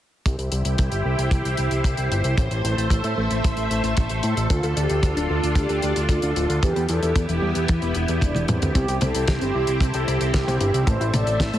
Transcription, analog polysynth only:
4.50 4.71 F4 loud
4.77 5.08 G4 medium
5.17 5.48 F4 medium
5.56 5.99 G4 medium
6.10 6.31 F4 medium
6.36 6.57 F4 medium
6.63 6.84 G4 loud
6.89 7.21 A4 medium
7.29 7.61 G4 medium
7.69 8.11 E4 medium
8.22 8.43 D4 medium
8.49 8.70 C4 medium
8.75 8.96 G4 loud
9.01 9.33 A4 medium
9.41 9.73 G4 medium
9.81 10.24 A4 loud
10.34 10.55 G4 medium
10.61 10.82 G4 medium
10.88 11.09 C5 loud
11.14 11.46 D5 medium
11.54 11.59 C5 medium

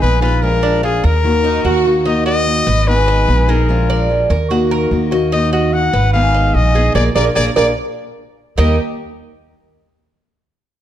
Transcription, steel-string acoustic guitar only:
0.01 0.21 G#3 soft
0.01 0.21 B3 medium
0.01 0.21 D#4 medium
0.01 0.20 G#4 medium
0.21 0.42 G#3 medium
0.21 0.42 B3 medium
0.21 0.42 D#4 medium
0.21 0.41 G#4 medium
0.42 0.81 F3 medium
0.42 0.82 G#3 medium
0.42 0.83 D4 medium
0.42 0.83 F4 medium
0.83 1.02 F3 soft
0.83 1.02 G#3 medium
0.83 1.03 D4 medium
0.83 1.03 F4 medium
1.03 muted steel-string acoustic guitar stroke medium
1.24 1.63 D#3 medium
1.24 1.64 A#3 medium
1.24 1.64 D#4 medium
1.24 1.65 F#4 medium
1.64 1.84 D#3 medium
1.64 1.85 A#3 medium
1.64 1.84 D#4 medium
1.64 1.84 F#4 medium
1.85 2.05 A#3 medium
1.85 2.05 D#4 medium
1.85 2.05 F#4 medium
2.05 2.44 D#3 medium
2.05 2.45 A#3 medium
2.05 2.46 D#4 medium
2.05 2.46 F#4 medium
2.46 2.65 D#3 medium
2.46 2.66 A#3 medium
2.46 2.66 D#4 medium
2.46 2.66 F#4 medium
2.67 muted steel-string acoustic guitar stroke medium
2.87 3.27 D#3 medium
2.87 3.27 G#3 medium
2.87 3.28 B3 medium
2.87 3.28 D#4 medium
2.87 3.28 G#4 medium
3.28 3.48 G#3 medium
3.28 3.48 B3 medium
3.28 3.48 D#4 medium
3.28 3.47 G#4 medium
3.48 3.68 G#3 medium
3.48 3.69 B3 medium
3.48 3.68 D#4 medium
3.48 3.68 G#4 medium
3.69 4.08 F3 medium
3.69 4.09 G#3 medium
3.69 4.09 D4 medium
3.69 4.10 F4 medium
4.10 4.29 F3 medium
4.10 4.29 G#3 medium
4.10 4.30 D4 soft
4.10 4.30 F4 medium
4.30 muted steel-string acoustic guitar stroke medium
4.50 4.90 D#3 medium
4.50 4.91 A#3 medium
4.50 4.91 D#4 medium
4.50 4.91 F#4 loud
4.91 5.11 D#3 medium
4.91 5.11 A#3 medium
4.91 5.11 D#4 medium
4.91 5.10 F#4 medium
5.11 5.32 A#3 medium
5.11 5.32 D#4 medium
5.11 5.31 F#4 medium
5.32 5.71 D#3 medium
5.32 5.72 A#3 medium
5.32 5.73 D#4 medium
5.32 5.73 F#4 medium
5.73 5.92 D#3 medium
5.73 5.93 A#3 medium
5.73 5.93 D#4 medium
5.73 5.93 F#4 medium
5.94 muted steel-string acoustic guitar stroke medium
6.13 6.54 D#3 medium
6.13 6.53 G#3 medium
6.13 6.54 B3 medium
6.13 6.54 D#4 medium
6.13 6.54 G#4 medium
6.54 6.74 G#3 medium
6.54 6.74 B3 medium
6.54 6.74 D#4 medium
6.54 6.74 G#4 medium
6.75 6.95 G#3 medium
6.75 6.95 B3 medium
6.75 6.95 D#4 medium
6.75 6.94 G#4 medium
6.95 7.09 A#3 loud
6.95 7.08 D4 medium
6.95 7.08 F4 medium
7.16 7.29 A#3 medium
7.16 7.29 D4 medium
7.16 7.29 F4 medium
7.36 7.49 A#3 medium
7.36 7.49 D4 medium
7.36 7.49 F4 medium
7.56 7.70 A#3 medium
7.56 7.70 D4 loud
7.56 7.70 F4 medium
8.58 8.74 D#3 medium
8.58 8.75 G3 medium
8.58 8.75 A#3 medium
8.58 8.75 D#4 medium
8.58 8.75 G4 medium

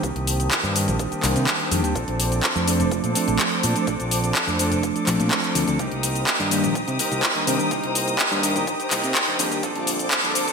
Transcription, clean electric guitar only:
0.03 0.50 D#3 medium
0.03 0.51 A#3 medium
0.03 0.52 C4 medium
0.03 0.51 G4 loud
0.51 0.74 D#3 medium
0.51 0.75 A#3 medium
0.51 0.75 C4 medium
0.51 0.76 G4 medium
0.75 0.88 D#3 medium
0.75 0.88 A#3 medium
0.75 0.87 C4 medium
0.75 0.86 G4 medium
0.87 1.12 A#3 soft
0.87 1.11 C4 medium
0.87 1.10 G4 medium
1.11 1.23 A#3 soft
1.11 1.23 C4 medium
1.11 1.23 G4 medium
1.23 1.46 D#3 medium
1.23 1.47 A#3 medium
1.23 1.47 C4 medium
1.23 1.47 G4 medium
1.47 1.70 D#3 medium
1.47 1.70 A#3 medium
1.47 1.71 G4 medium
1.71 1.84 D#3 medium
1.71 1.84 A#3 medium
1.71 1.83 C4 medium
1.71 1.82 G4 medium
1.83 1.95 A#3 soft
1.83 1.94 C4 medium
1.83 1.95 G4 medium
1.95 2.42 F3 medium
1.95 2.43 C4 medium
1.95 2.43 D4 medium
1.95 2.43 A4 medium
2.43 2.66 F3 medium
2.43 2.67 C4 medium
2.43 2.67 D4 loud
2.43 2.68 A4 medium
2.67 2.80 F3 medium
2.67 2.80 C4 medium
2.67 2.79 D4 medium
2.67 2.78 A4 medium
2.80 3.04 C4 medium
2.80 3.03 D4 medium
2.80 3.02 A4 medium
3.03 3.15 C4 medium
3.03 3.15 D4 medium
3.03 3.15 A4 medium
3.15 3.38 F3 medium
3.15 3.39 C4 medium
3.15 3.39 D4 medium
3.15 3.39 A4 medium
3.39 3.62 F3 medium
3.39 3.63 C4 medium
3.39 3.63 D4 medium
3.63 3.76 F3 medium
3.63 3.76 C4 medium
3.63 3.75 D4 medium
3.63 3.74 A4 medium
3.75 3.86 C4 medium
3.75 3.87 D4 medium
3.75 3.87 A4 medium
3.87 4.34 F3 medium
3.87 4.35 C4 medium
3.87 4.35 D4 loud
3.87 4.35 A4 loud
4.35 4.58 F3 medium
4.35 4.58 C4 medium
4.35 4.59 D4 medium
4.35 4.60 A4 medium
4.59 4.72 F3 medium
4.59 4.72 C4 medium
4.59 4.71 D4 medium
4.59 4.70 A4 medium
4.72 4.96 C4 soft
4.72 4.95 D4 medium
4.72 4.94 A4 medium
4.95 5.06 C4 medium
4.95 5.07 D4 medium
4.95 5.07 A4 medium
5.07 5.30 F3 medium
5.07 5.30 C4 medium
5.07 5.31 D4 medium
5.07 5.31 A4 medium
5.31 5.54 F3 medium
5.31 5.55 C4 medium
5.31 5.55 D4 medium
5.31 5.56 A4 medium
5.55 5.68 F3 medium
5.55 5.68 C4 medium
5.55 5.67 D4 medium
5.55 5.66 A4 medium
5.67 5.79 C4 medium
5.67 5.80 D4 medium
5.67 5.79 A4 medium
5.79 6.27 A#3 medium
5.79 6.27 D#4 loud
5.79 6.27 G4 loud
6.27 6.50 A#3 medium
6.27 6.51 D#4 medium
6.27 6.52 G4 loud
6.51 6.64 A#3 medium
6.51 6.64 D#4 medium
6.51 6.62 G4 medium
6.64 6.88 D#4 medium
6.64 6.86 G4 medium
6.88 6.99 D#4 soft
6.88 6.99 G4 medium
6.99 7.22 A#3 medium
6.99 7.23 D#4 medium
6.99 7.24 G4 medium
7.23 7.46 A#3 medium
7.23 7.47 D#4 medium
7.23 7.48 G4 medium
7.47 7.60 A#3 medium
7.47 7.60 D#4 medium
7.47 7.58 G4 medium
7.59 7.71 D#4 medium
7.59 7.71 G4 medium
7.71 8.19 A#3 loud
7.71 8.19 D#4 loud
7.71 8.19 G4 loud
8.19 8.42 A#3 medium
8.19 8.43 D#4 medium
8.19 8.44 G4 medium
8.43 8.56 A#3 medium
8.43 8.56 D#4 medium
8.43 8.54 G4 medium
8.55 8.80 D#4 medium
8.55 8.78 G4 medium
8.79 8.91 D#4 soft
8.79 8.91 G4 medium
8.91 9.14 A#3 medium
8.91 9.15 D#4 medium
8.91 9.15 G4 medium
9.15 9.38 A#3 medium
9.15 9.39 D#4 medium
9.15 9.40 G4 loud
9.39 9.52 A#3 medium
9.39 9.52 D#4 medium
9.39 9.50 G4 medium
9.51 9.64 D#4 medium
9.51 9.63 G4 medium
9.63 10.10 F3 medium
9.63 10.11 C4 medium
9.63 10.11 D4 loud
9.63 10.11 A4 loud
10.11 10.34 F3 medium
10.11 10.35 C4 medium
10.11 10.36 D4 medium
10.11 10.36 A4 loud
10.35 10.48 F3 medium
10.35 10.48 C4 medium
10.35 10.48 D4 medium
10.35 10.47 A4 medium
10.48 10.53 D4 medium
10.48 10.53 A4 medium

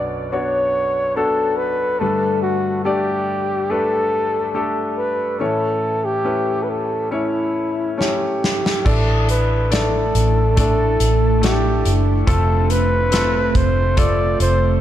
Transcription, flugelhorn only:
0.32 1.18 C#5 medium
1.16 1.58 A4 medium
1.57 2.01 B4 medium
1.99 2.42 A4 medium
2.42 2.82 F#4 medium
2.85 3.72 G4 medium
3.71 4.71 A4 medium
4.98 5.41 B4 medium
5.40 6.06 A4 medium
6.05 6.65 G4 medium
6.63 6.71 B4 soft
6.70 7.12 A4 medium
7.12 7.95 E4 medium
8.01 8.83 G4 medium
8.87 9.26 A4 medium
9.30 9.74 B4 medium
9.73 10.58 A4 medium
10.59 11.39 A4 medium
11.44 11.97 G4 medium
12.29 12.72 A4 medium
12.71 13.58 B4 medium
13.57 14.00 C5 medium
13.99 14.40 D5 medium
14.42 14.80 C5 medium

